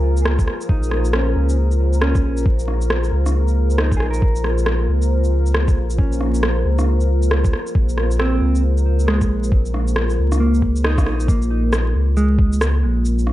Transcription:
Already playing: C#2 A#3 F4 G#4 A#4 C5
0.17 shaker
0.25 cross-stick
0.39 kick, shaker
0.48 cross-stick
0.61 shaker
0.69 A#1 D#4, kick
0.83 shaker
0.91 cross-stick
1.05 shaker
1.13 C#4, cross-stick
1.36 C#2
1.49 shaker
1.71 shaker
1.93 shaker
2.01 C#4, cross-stick
2.15 kick, shaker
2.23 A#1
2.37 shaker
2.46 kick
2.59 shaker
2.68 cross-stick
2.81 shaker
2.90 cross-stick
3.04 shaker
3.12 C#2
3.26 cross-stick, shaker
3.48 shaker
3.70 shaker
3.78 D#4, cross-stick
3.92 kick, shaker
3.97 A#1 G#4, cross-stick
4.11 A#4, shaker
4.22 A#1, kick
4.36 shaker
4.44 cross-stick
4.58 shaker
4.66 cross-stick
4.89 C#2
5.02 shaker
5.24 shaker
5.46 shaker
5.54 cross-stick
5.68 kick, shaker
5.77 A#1
5.90 shaker
5.98 C#4, kick
6.12 shaker
6.21 cross-stick
6.35 shaker
6.43 cross-stick
6.65 C#2
6.79 cross-stick, shaker
7.00 shaker
7.22 shaker
7.31 cross-stick
7.44 kick, shaker
7.53 cross-stick
7.67 shaker
7.75 A#1, kick
7.89 shaker
7.98 cross-stick
8.11 shaker
8.19 C4, cross-stick
8.41 C#2
8.55 shaker
8.77 shaker
8.99 shaker
9.08 G#3, cross-stick
9.21 kick, shaker
9.30 A#1
9.44 shaker
9.52 kick
9.66 shaker
9.74 cross-stick
9.88 shaker
9.96 cross-stick
10.10 shaker
10.19 C#2
10.32 cross-stick, shaker
10.40 A#3
10.54 shaker
10.62 kick
10.76 shaker
10.84 D#4, cross-stick
10.98 kick, cross-stick, shaker
11.06 A#1, cross-stick
11.20 shaker
11.28 A#1 A#3, kick, shaker
11.37 F4
11.42 shaker
11.57 A#4
11.70 G#4, cross-stick, shaker
11.95 C#2
12.13 G#3 C5, shaker
12.39 kick
12.53 shaker
12.61 cross-stick, shaker
12.83 A#1
13.05 shaker
13.19 shaker
13.27 cross-stick

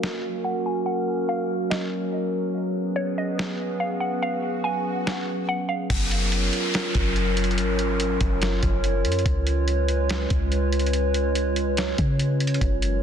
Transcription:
Already playing: F#3 A#3 C#4 F#4 A#4 F5
0.03 snare
0.44 F#5
0.66 G#5
0.86 F#5
1.29 F5
1.70 D#5, snare
2.54 B3 C#4 G#4 B4, swell
2.96 C#5
3.18 D#5
3.39 snare
3.80 F5
4.00 F#5
4.22 F5
4.64 G#5
5.07 snare
5.49 F#5
5.69 F5
5.90 F#1 F#3 C#4 F4 A#4 C#5, kick, closed hi-hat, crash, downlifter
6.11 closed hi-hat
6.32 closed hi-hat
6.53 closed hi-hat
6.74 snare, closed hi-hat
6.95 F#1, kick, closed hi-hat
7.16 closed hi-hat
7.37 closed hi-hat
7.44 closed hi-hat
7.51 closed hi-hat
7.58 G#1, closed hi-hat
7.79 closed hi-hat
8.00 closed hi-hat
8.21 F#1, kick, closed hi-hat
8.42 snare, closed hi-hat
8.63 F#1, kick, closed hi-hat
8.84 closed hi-hat
9.05 F#2, closed hi-hat
9.12 closed hi-hat
9.19 closed hi-hat
9.26 C#2 G#3 C#4 B4, kick, closed hi-hat
9.47 closed hi-hat
9.68 closed hi-hat
9.89 closed hi-hat
10.09 snare, closed hi-hat
10.30 C#2, kick, closed hi-hat
10.52 closed hi-hat
10.72 closed hi-hat
10.79 closed hi-hat
10.86 closed hi-hat
10.93 closed hi-hat
11.14 closed hi-hat
11.35 closed hi-hat
11.56 closed hi-hat
11.77 snare, closed hi-hat
11.98 C#3, kick, closed hi-hat
12.19 closed hi-hat
12.40 closed hi-hat
12.47 closed hi-hat
12.54 closed hi-hat
12.61 F#1 F#3 A#4, kick, closed hi-hat
12.82 closed hi-hat

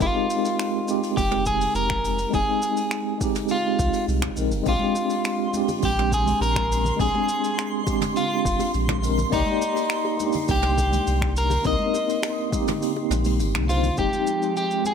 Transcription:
Already playing: G#3 G4 A#4
0.00 F1 C4 D#4 F4 G4, kick, open hi-hat, shaker
0.30 open hi-hat, shaker
0.45 open hi-hat, shaker
0.60 finger snap, open hi-hat, shaker
0.85 G#3 C4 D#4, open hi-hat, shaker
0.91 G4
1.03 open hi-hat, shaker
1.17 F1 G4, kick, open hi-hat, shaker
1.31 mid tom
1.46 G#4, kick, open hi-hat, shaker
1.61 open hi-hat, shaker
1.75 F1 A#4, open hi-hat, shaker
1.90 finger snap, kick
2.04 open hi-hat, shaker
2.18 open hi-hat, shaker
2.30 F1 G#3 C4 D#4, kick, open hi-hat, shaker
2.35 G#4
2.62 open hi-hat, shaker
2.77 open hi-hat, shaker
2.91 finger snap, open hi-hat, shaker
3.18 G#3 C4 D#4, kick, open hi-hat, shaker
3.24 G4
3.35 mid tom, open hi-hat, shaker
3.48 F4, open hi-hat, shaker
3.79 C2, kick, open hi-hat, shaker
3.93 open hi-hat, shaker
4.08 C2, open hi-hat, shaker
4.22 finger snap, kick, mid tom
4.36 A#1 G#3 C4 D#4 A#4, open hi-hat, shaker
4.51 F1, open hi-hat, shaker
4.63 A#1 G#3 C4 C6, kick, open hi-hat, high bongo, shaker
4.67 D4 F4 G4
4.79 high conga
4.95 open hi-hat, high bongo, shaker
5.10 open hi-hat, shaker
5.24 finger snap, open hi-hat, shaker
5.39 high bongo
5.51 G#3 C4 D4, open hi-hat, high conga, shaker
5.57 G4
5.68 open hi-hat, high bongo, low conga, shaker
5.82 A#1 G4, kick, open hi-hat, shaker
5.99 mid tom
6.12 G#4, kick, open hi-hat, high bongo, shaker
6.26 open hi-hat, high conga, low conga, shaker
6.41 A#1 A#4, open hi-hat, high bongo, shaker
6.56 finger snap, kick
6.71 open hi-hat, shaker
6.85 open hi-hat, high bongo, low conga, shaker
6.97 A#1 G#3 C4 D4 G#4, kick, open hi-hat, shaker
7.03 G#4
7.15 high bongo, high conga
7.29 open hi-hat, shaker
7.44 open hi-hat, shaker
7.58 finger snap, open hi-hat, high bongo, shaker
7.84 G#3 C4 D4, kick, open hi-hat, high bongo, high conga, shaker
7.90 G4
8.01 mid tom, open hi-hat, low conga, shaker
8.15 F4, open hi-hat, shaker
8.30 high bongo
8.45 F1, kick, open hi-hat, shaker
8.59 open hi-hat, high bongo, high conga, shaker
8.74 A#1, open hi-hat, shaker
8.88 finger snap, kick, mid tom, low conga
9.02 G#3 C4 D4 A#4, open hi-hat, high bongo, shaker
9.17 open hi-hat, low conga, shaker
9.30 C2 A#3 D#4 D5, kick, open hi-hat, high bongo, shaker
9.36 G4
9.46 high conga
9.61 open hi-hat, shaker
9.75 open hi-hat, high bongo, shaker
9.90 finger snap, open hi-hat, shaker
10.05 high bongo
10.17 A#3 D4 D#4, open hi-hat, high conga, shaker
10.23 G4
10.33 open hi-hat, low conga, shaker
10.48 C2 G4, kick, open hi-hat, high bongo, shaker
10.62 mid tom
10.78 kick, open hi-hat, high bongo, shaker
10.92 open hi-hat, high conga, low conga, shaker
11.07 C2, open hi-hat, shaker
11.22 finger snap, kick, high bongo
11.36 A#4, open hi-hat, shaker
11.50 open hi-hat, high bongo, low conga, shaker
11.62 C2 A#3 C4, kick, open hi-hat, shaker
11.66 D#4 A#4 D#5
11.79 high conga
11.94 open hi-hat, high bongo, shaker
12.09 open hi-hat, shaker
12.23 finger snap, open hi-hat, high bongo, shaker
12.50 A#3 C4 D#4, kick, open hi-hat, high conga, shaker
12.56 G4
12.67 mid tom, open hi-hat, high bongo, low conga, shaker
12.82 open hi-hat, shaker
12.96 high bongo
13.10 A#1, mid tom, open hi-hat, shaker
13.25 open hi-hat, high conga, shaker
13.39 G1, open hi-hat, high bongo, shaker
13.54 C2, finger snap, mid tom, low conga
13.68 A#3 D4 D#4 F4 C5, open hi-hat, high bongo, shaker
13.83 open hi-hat, low conga, shaker
13.95 F1 F3 G#3 C4 D#4 G4 G5, kick, shaker
13.99 D#4 G4
14.13 high conga, shaker
14.27 shaker
14.42 shaker
14.57 G4, shaker
14.71 shaker
14.82 G#3 C4, high conga, shaker
14.86 D#4 G4 G#4

